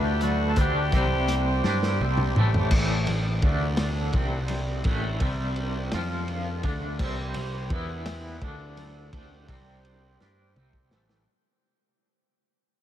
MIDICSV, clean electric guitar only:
0, 0, Header, 1, 2, 480
1, 0, Start_track
1, 0, Tempo, 712589
1, 389, Time_signature, 6, 3, 24, 8
1, 8636, End_track
2, 0, Start_track
2, 0, Title_t, "Clean electric guitar"
2, 0, Program_c, 0, 27
2, 0, Note_on_c, 0, 50, 87
2, 0, Note_on_c, 0, 57, 95
2, 0, Note_on_c, 0, 62, 86
2, 381, Note_off_c, 0, 50, 0
2, 382, Note_off_c, 0, 57, 0
2, 386, Note_off_c, 0, 62, 0
2, 389, Note_on_c, 0, 50, 95
2, 390, Note_on_c, 0, 57, 101
2, 395, Note_on_c, 0, 62, 103
2, 622, Note_off_c, 0, 50, 0
2, 623, Note_off_c, 0, 57, 0
2, 625, Note_on_c, 0, 48, 98
2, 626, Note_off_c, 0, 62, 0
2, 632, Note_on_c, 0, 55, 112
2, 633, Note_on_c, 0, 60, 104
2, 1102, Note_off_c, 0, 48, 0
2, 1105, Note_off_c, 0, 55, 0
2, 1106, Note_off_c, 0, 60, 0
2, 1113, Note_on_c, 0, 55, 92
2, 1118, Note_on_c, 0, 62, 80
2, 1124, Note_on_c, 0, 67, 102
2, 1345, Note_off_c, 0, 55, 0
2, 1348, Note_off_c, 0, 62, 0
2, 1349, Note_on_c, 0, 48, 76
2, 1351, Note_off_c, 0, 67, 0
2, 1359, Note_on_c, 0, 55, 84
2, 1359, Note_on_c, 0, 60, 90
2, 1584, Note_off_c, 0, 48, 0
2, 1588, Note_off_c, 0, 55, 0
2, 1589, Note_off_c, 0, 60, 0
2, 1597, Note_on_c, 0, 45, 95
2, 1601, Note_on_c, 0, 52, 89
2, 1606, Note_on_c, 0, 57, 107
2, 1828, Note_off_c, 0, 45, 0
2, 1830, Note_off_c, 0, 52, 0
2, 1832, Note_off_c, 0, 57, 0
2, 1838, Note_on_c, 0, 45, 93
2, 1840, Note_on_c, 0, 52, 89
2, 1850, Note_on_c, 0, 57, 95
2, 2069, Note_off_c, 0, 45, 0
2, 2070, Note_off_c, 0, 52, 0
2, 2074, Note_off_c, 0, 57, 0
2, 2081, Note_on_c, 0, 45, 65
2, 2082, Note_on_c, 0, 52, 78
2, 2269, Note_off_c, 0, 45, 0
2, 2270, Note_off_c, 0, 52, 0
2, 2312, Note_on_c, 0, 50, 92
2, 2321, Note_on_c, 0, 57, 93
2, 2324, Note_on_c, 0, 62, 96
2, 2786, Note_off_c, 0, 50, 0
2, 2790, Note_off_c, 0, 57, 0
2, 2792, Note_off_c, 0, 62, 0
2, 2794, Note_on_c, 0, 48, 76
2, 2801, Note_on_c, 0, 55, 89
2, 2805, Note_on_c, 0, 60, 79
2, 3267, Note_off_c, 0, 48, 0
2, 3271, Note_off_c, 0, 55, 0
2, 3272, Note_off_c, 0, 60, 0
2, 3278, Note_on_c, 0, 45, 91
2, 3279, Note_on_c, 0, 52, 97
2, 3284, Note_on_c, 0, 57, 98
2, 3504, Note_off_c, 0, 45, 0
2, 3507, Note_on_c, 0, 48, 102
2, 3509, Note_off_c, 0, 52, 0
2, 3512, Note_off_c, 0, 57, 0
2, 3516, Note_on_c, 0, 55, 114
2, 3517, Note_on_c, 0, 60, 105
2, 3983, Note_off_c, 0, 48, 0
2, 3988, Note_off_c, 0, 55, 0
2, 3989, Note_off_c, 0, 60, 0
2, 4002, Note_on_c, 0, 53, 100
2, 4009, Note_on_c, 0, 60, 88
2, 4010, Note_on_c, 0, 65, 106
2, 4471, Note_off_c, 0, 53, 0
2, 4474, Note_off_c, 0, 60, 0
2, 4475, Note_off_c, 0, 65, 0
2, 4476, Note_on_c, 0, 50, 87
2, 4479, Note_on_c, 0, 57, 84
2, 4481, Note_on_c, 0, 62, 94
2, 4708, Note_off_c, 0, 50, 0
2, 4709, Note_off_c, 0, 57, 0
2, 4710, Note_off_c, 0, 62, 0
2, 4711, Note_on_c, 0, 48, 85
2, 4716, Note_on_c, 0, 55, 94
2, 4718, Note_on_c, 0, 60, 106
2, 4945, Note_off_c, 0, 48, 0
2, 4948, Note_off_c, 0, 55, 0
2, 4949, Note_off_c, 0, 60, 0
2, 4960, Note_on_c, 0, 48, 71
2, 4966, Note_on_c, 0, 55, 76
2, 5149, Note_off_c, 0, 48, 0
2, 5152, Note_off_c, 0, 55, 0
2, 5196, Note_on_c, 0, 52, 97
2, 5202, Note_on_c, 0, 59, 93
2, 5205, Note_on_c, 0, 64, 105
2, 5668, Note_off_c, 0, 52, 0
2, 5670, Note_off_c, 0, 59, 0
2, 5672, Note_off_c, 0, 64, 0
2, 5676, Note_on_c, 0, 50, 73
2, 5681, Note_on_c, 0, 57, 81
2, 5686, Note_on_c, 0, 62, 107
2, 6147, Note_off_c, 0, 50, 0
2, 6147, Note_off_c, 0, 57, 0
2, 6152, Note_off_c, 0, 62, 0
2, 6155, Note_on_c, 0, 50, 94
2, 6155, Note_on_c, 0, 57, 111
2, 6165, Note_on_c, 0, 62, 105
2, 6386, Note_off_c, 0, 57, 0
2, 6387, Note_off_c, 0, 50, 0
2, 6391, Note_on_c, 0, 48, 100
2, 6392, Note_off_c, 0, 62, 0
2, 6395, Note_on_c, 0, 55, 109
2, 6400, Note_on_c, 0, 60, 101
2, 6864, Note_off_c, 0, 48, 0
2, 6866, Note_off_c, 0, 55, 0
2, 6869, Note_off_c, 0, 60, 0
2, 6875, Note_on_c, 0, 55, 81
2, 6885, Note_on_c, 0, 62, 82
2, 6888, Note_on_c, 0, 67, 100
2, 7106, Note_off_c, 0, 55, 0
2, 7111, Note_off_c, 0, 62, 0
2, 7113, Note_off_c, 0, 67, 0
2, 7113, Note_on_c, 0, 48, 88
2, 7120, Note_on_c, 0, 55, 84
2, 7122, Note_on_c, 0, 60, 99
2, 7345, Note_off_c, 0, 48, 0
2, 7349, Note_off_c, 0, 55, 0
2, 7350, Note_off_c, 0, 60, 0
2, 7355, Note_on_c, 0, 45, 80
2, 7358, Note_on_c, 0, 52, 91
2, 7366, Note_on_c, 0, 57, 99
2, 7586, Note_off_c, 0, 45, 0
2, 7588, Note_off_c, 0, 52, 0
2, 7591, Note_off_c, 0, 57, 0
2, 8636, End_track
0, 0, End_of_file